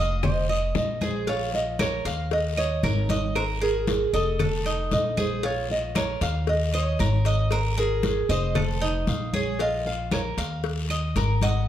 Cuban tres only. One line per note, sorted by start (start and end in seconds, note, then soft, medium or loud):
0.00 0.23 D#5 medium
0.23 0.49 C5 medium
0.49 1.00 D#5 medium
1.02 1.27 G#4 medium
1.27 1.78 F4 medium
1.79 2.05 A#4 medium
2.05 2.56 F5 medium
2.57 2.83 D#5 medium
2.84 3.09 A#4 medium
3.10 3.35 D#5 medium
3.36 3.61 A#4 medium
3.62 4.12 G#4 medium
4.14 4.39 D#5 medium
4.40 4.65 A4 medium
4.66 5.16 D#4 medium
5.17 5.43 G#4 medium
5.43 5.94 F4 medium
5.96 6.21 A#4 medium
6.22 6.72 F5 medium
6.74 6.99 D#5 medium
7.00 7.25 A#4 medium
7.26 7.51 D#5 medium
7.52 7.77 A#4 medium
7.78 8.28 G#4 medium
8.30 8.55 D#5 medium
8.55 8.81 A4 medium
8.81 9.32 D#4 medium
9.34 9.59 G#4 medium
9.60 10.10 F4 medium
10.12 10.37 A#4 medium
10.38 10.89 F5 medium
10.90 11.15 D#5 medium
11.16 11.42 A#4 medium
11.43 11.68 D#5 medium